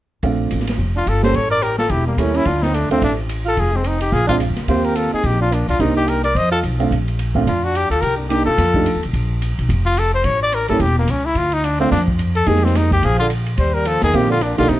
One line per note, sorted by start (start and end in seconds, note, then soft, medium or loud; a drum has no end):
0.23 0.49 A#1 medium
0.23 0.64 A3 soft
0.23 0.64 C4 soft
0.23 0.64 D4 soft
0.23 0.64 F4 soft
0.23 kick soft
0.23 ride soft
0.51 0.77 A1 medium
0.51 hi-hat pedal soft
0.51 ride medium
0.60 snare soft
0.67 snare soft
0.67 ride medium
0.78 1.04 F1 medium
0.78 kick soft
0.95 1.09 D4 medium
0.95 1.10 F4 medium
1.07 1.32 G1 medium
1.07 1.23 F4 medium
1.07 1.24 A4 medium
1.07 hi-hat pedal soft
1.07 ride medium
1.22 1.33 G3 medium
1.22 1.33 A#3 medium
1.22 1.33 C#4 soft
1.22 1.33 G4 medium
1.22 1.35 A4 medium
1.22 1.37 C5 medium
1.22 snare soft
1.34 1.87 A1 medium
1.34 1.49 A4 medium
1.34 1.51 C#5 medium
1.34 kick soft
1.34 ride soft
1.50 1.63 A#4 medium
1.50 1.65 D5 medium
1.62 1.78 G4 medium
1.62 1.78 A#4 medium
1.62 hi-hat pedal soft
1.62 ride medium
1.78 1.91 F4 medium
1.78 1.92 A4 medium
1.78 snare soft
1.89 2.16 E1 medium
1.89 2.06 E4 medium
1.89 2.07 G4 medium
1.89 kick soft
1.89 ride medium
2.07 2.19 G3 soft
2.07 2.20 A#3 medium
2.17 2.43 D#2 medium
2.17 2.46 G3 medium
2.17 2.35 A3 medium
2.17 2.46 A#3 soft
2.17 2.38 C#4 medium
2.17 2.46 C#4 soft
2.17 2.46 E4 medium
2.17 hi-hat pedal medium
2.17 ride medium
2.34 2.48 C#4 medium
2.34 2.48 E4 medium
2.34 ride soft
2.45 2.87 D2 medium
2.45 2.65 D4 medium
2.45 2.64 F4 medium
2.45 kick soft
2.45 ride medium
2.63 2.75 C4 medium
2.63 2.76 D#4 medium
2.63 snare soft
2.74 2.90 A3 medium
2.74 2.90 D4 medium
2.74 hi-hat pedal soft
2.74 ride medium
2.90 3.00 D#2 medium
2.90 3.01 A3 medium
2.90 3.00 A3 medium
2.90 3.01 C4 medium
2.90 3.02 C4 medium
2.90 3.01 D4 medium
2.90 3.01 F4 medium
2.90 ride soft
3.01 3.54 A1 medium
3.01 3.16 A3 medium
3.01 3.13 D4 medium
3.01 kick soft
3.01 ride medium
3.29 hi-hat pedal medium
3.29 ride medium
3.45 3.57 F4 medium
3.45 3.61 A4 medium
3.57 4.10 F1 medium
3.57 3.74 F4 medium
3.57 3.78 G#4 medium
3.57 kick soft
3.57 ride soft
3.72 3.85 G#3 soft
3.72 3.89 C4 medium
3.84 3.99 C4 medium
3.84 4.01 D#4 medium
3.84 hi-hat pedal soft
3.84 ride medium
4.00 4.14 D#4 medium
4.00 4.15 G4 medium
4.00 ride medium
4.12 4.47 A#1 medium
4.12 4.26 F4 medium
4.12 4.28 G#4 medium
4.12 kick soft
4.12 snare soft
4.27 4.39 G#3 medium
4.27 4.40 C4 medium
4.27 4.38 D4 medium
4.27 4.39 D4 medium
4.27 4.36 F4 medium
4.27 4.40 F4 medium
4.27 kick soft
4.40 hi-hat pedal soft
4.40 ride medium
4.50 4.58 F2 medium
4.56 4.67 D2 medium
4.56 snare soft
4.56 ride soft
4.68 5.09 D#2 medium
4.68 5.45 A#3 medium
4.68 5.45 C4 soft
4.68 5.45 F4 soft
4.68 4.84 G4 medium
4.68 5.45 G4 medium
4.68 4.87 C5 medium
4.68 kick soft
4.68 ride soft
4.84 4.98 G4 medium
4.84 4.98 A#4 medium
4.84 ride soft
4.95 5.12 F4 medium
4.95 5.12 A4 medium
4.95 hi-hat pedal medium
4.95 ride medium
5.13 5.24 D#4 medium
5.13 5.28 G#4 medium
5.13 muted upright bass stroke soft
5.24 5.65 A#1 medium
5.24 5.40 D#4 medium
5.24 5.41 G4 medium
5.24 kick soft
5.24 ride soft
5.40 5.53 D4 medium
5.40 5.56 F4 medium
5.52 5.68 A#3 soft
5.52 5.68 D4 medium
5.52 hi-hat pedal soft
5.52 ride medium
5.68 5.79 C#2 medium
5.68 5.81 D4 medium
5.68 5.82 F4 medium
5.68 ride soft
5.79 6.32 C2 medium
5.79 6.20 A#3 medium
5.79 5.95 C4 medium
5.79 6.21 D4 medium
5.79 6.21 D#4 medium
5.79 5.96 D#4 medium
5.79 6.21 G4 medium
5.79 kick soft
5.79 ride medium
5.96 6.09 D#4 medium
5.96 6.10 G4 medium
6.07 6.24 G4 medium
6.07 6.24 A#4 medium
6.07 hi-hat pedal soft
6.07 ride medium
6.24 6.36 A#4 medium
6.24 6.39 D5 medium
6.24 ride soft
6.35 6.61 F2 medium
6.35 6.51 C5 medium
6.35 6.52 D#5 medium
6.35 kick soft
6.35 ride medium
6.51 6.62 F4 medium
6.51 6.59 A4 medium
6.63 6.89 B1 medium
6.63 hi-hat pedal soft
6.63 ride medium
6.79 6.90 A3 medium
6.79 6.90 C4 soft
6.79 6.90 D4 medium
6.79 6.90 F4 medium
6.79 ride soft
6.91 7.44 A#1 medium
6.91 kick soft
6.91 ride soft
7.08 ride soft
7.19 hi-hat pedal soft
7.19 ride medium
7.34 7.45 A3 medium
7.34 7.45 C4 medium
7.34 7.46 D4 soft
7.34 7.46 F4 medium
7.34 kick medium
7.46 7.88 F2 medium
7.46 7.63 D4 medium
7.46 7.66 F4 medium
7.46 kick soft
7.46 ride medium
7.63 7.75 D4 medium
7.63 7.78 F#4 medium
7.75 7.91 D4 medium
7.75 7.90 G4 medium
7.75 hi-hat pedal medium
7.75 ride medium
7.90 8.01 D2 medium
7.90 8.05 F4 medium
7.90 8.03 A4 medium
7.90 ride soft
8.01 8.43 C2 medium
8.01 8.19 G4 medium
8.01 8.16 A#4 medium
8.01 kick soft
8.01 ride medium
8.17 8.32 A#3 soft
8.17 8.31 D4 soft
8.29 8.44 A#3 medium
8.29 8.44 D4 soft
8.29 8.45 D#4 soft
8.29 8.46 D#4 medium
8.29 8.45 G4 medium
8.29 hi-hat pedal soft
8.29 ride medium
8.46 8.57 C3 medium
8.46 9.04 F4 medium
8.46 9.04 A4 medium
8.58 8.92 F2 medium
8.58 kick soft
8.58 snare soft
8.58 ride medium
8.74 8.85 A3 medium
8.74 8.85 D4 soft
8.74 8.85 D#4 medium
8.74 8.85 G4 medium
8.74 kick soft
8.86 hi-hat pedal medium
8.86 ride medium
8.95 9.04 D#2 medium
9.03 9.13 B1 medium
9.03 ride soft
9.13 9.55 A#1 medium
9.13 kick soft
9.13 ride medium
9.42 hi-hat pedal soft
9.42 ride medium
9.58 9.68 B1 medium
9.58 ride soft
9.69 10.22 F1 medium
9.69 kick soft
9.69 ride medium
9.86 10.00 F4 medium
9.97 10.14 A4 medium
9.97 hi-hat pedal medium
9.97 ride medium
10.15 10.27 C5 medium
10.24 10.66 A1 medium
10.24 10.41 C#5 medium
10.24 kick soft
10.24 ride medium
10.43 10.56 D5 loud
10.52 10.69 A#4 medium
10.52 hi-hat pedal medium
10.52 ride medium
10.68 10.79 G#1 medium
10.68 10.79 G3 medium
10.68 10.79 A#3 medium
10.68 10.80 C#4 medium
10.68 10.80 E4 medium
10.68 10.83 A4 medium
10.68 ride soft
10.80 11.06 E1 medium
10.80 10.97 G4 medium
10.80 kick soft
10.80 ride medium
10.99 11.12 A#3 medium
11.08 11.34 C#2 medium
11.08 11.27 C#4 medium
11.08 hi-hat pedal medium
11.08 ride medium
11.26 11.39 E4 medium
11.35 11.88 D2 medium
11.35 11.55 F4 medium
11.35 kick soft
11.35 ride medium
11.52 11.66 D#4 medium
11.52 ride soft
11.64 11.80 D4 medium
11.64 hi-hat pedal medium
11.64 ride medium
11.79 11.90 A3 medium
11.79 11.90 C4 medium
11.79 11.91 C4 medium
11.79 11.90 D4 medium
11.79 11.91 F4 medium
11.91 12.44 F2 medium
11.91 12.02 D4 medium
11.91 kick soft
11.91 snare soft
11.91 ride medium
12.08 kick soft
12.19 hi-hat pedal soft
12.19 ride medium
12.35 12.49 A4 medium
12.35 ride soft
12.46 13.00 F2 medium
12.46 13.03 G#3 medium
12.46 13.03 A#3 soft
12.46 13.03 D#4 medium
12.46 13.03 G4 medium
12.46 12.66 G#4 medium
12.46 kick soft
12.46 ride medium
12.56 snare soft
12.65 12.78 C4 medium
12.65 snare soft
12.75 12.92 D#4 medium
12.75 snare soft
12.75 hi-hat pedal soft
12.75 ride medium
12.91 13.07 G4 medium
12.91 kick medium
12.91 ride soft
13.03 13.56 A#1 medium
13.03 13.20 F3 medium
13.03 13.19 G#4 medium
13.03 kick soft
13.03 ride medium
13.20 13.30 D3 medium
13.20 13.27 F4 medium
13.30 hi-hat pedal soft
13.30 ride medium
13.46 ride soft
13.58 13.99 D#2 medium
13.58 13.74 G3 medium
13.58 13.75 C5 medium
13.58 kick soft
13.58 ride medium
13.74 13.88 G3 medium
13.74 13.89 A#4 medium
13.85 14.02 F3 medium
13.85 14.03 A4 medium
13.85 hi-hat pedal medium
13.85 ride medium
14.02 14.13 E2 medium
14.02 14.14 D#3 medium
14.02 14.18 G#4 medium
14.02 snare soft
14.02 ride soft
14.13 14.55 A#1 medium
14.13 14.29 D#3 medium
14.13 14.29 A#3 medium
14.13 14.29 C4 medium
14.13 14.29 F4 medium
14.13 14.29 G4 medium
14.13 14.31 G4 medium
14.13 kick soft
14.13 ride medium
14.29 14.44 D3 medium
14.29 14.44 F4 medium
14.41 14.58 A#2 medium
14.41 14.58 D4 medium
14.41 hi-hat pedal medium
14.41 ride medium
14.57 14.69 B1 medium
14.57 14.71 D3 medium
14.57 14.68 A#3 medium
14.57 14.68 D4 medium
14.57 14.68 D#4 medium
14.57 14.70 F4 medium
14.57 14.68 G4 medium
14.57 ride soft
14.69 14.80 C2 medium
14.69 14.80 C3 medium
14.69 14.80 D#4 medium
14.69 kick soft
14.69 ride soft